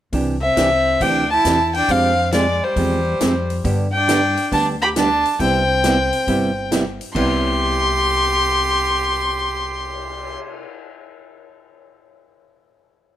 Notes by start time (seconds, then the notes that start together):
0.13 C2 C3 E3 D4 G4, kick, open hi-hat
0.41 C4 E5
0.57 C2 C3 E3 D4 G4, snare, closed hi-hat
1.01 D2 C3 E3 D4 G4 G5, kick, open hi-hat
1.31 E4 A5
1.45 E2 C3 E3 D4 G4, snare, closed hi-hat
1.74 D4 G5, open hi-hat
1.88 F2 F3 G#3 C4 G4 F5, kick, open hi-hat
2.32 F3 G#3 C4 G4 D5, snare, closed hi-hat
2.64 G3 C5
2.76 E2 F3 G#3 C4 G4, kick, open hi-hat
3.21 F2 F3 G#3 C4 G4, snare, closed hi-hat
3.50 open hi-hat
3.64 G2 D3 G3 B3 D4 G4, kick, open hi-hat
3.92 D4 G5
4.08 D3 G3 B3 D4 G4, snare, closed hi-hat
4.37 open hi-hat
4.52 D2 D3 G3 B3 D4 G4 A5, kick, open hi-hat
4.82 G4 B5
4.96 D3 G3 B3 D4 G4 A5, snare, closed hi-hat
5.25 open hi-hat
5.39 C2 C3 G3 B3 C4 E4 G4 G5, kick, open hi-hat
5.84 C3 G3 B3 E4 G4, snare, closed hi-hat
6.13 open hi-hat
6.27 G1 C3 G3 B3 E4 G4, kick, open hi-hat
6.71 C3 G3 B3 E4 G4, snare, closed hi-hat
7.01 open hi-hat
7.14 C2 C3 G3 B3 E4 G4 C6, kick, crash
7.45 cymbal swell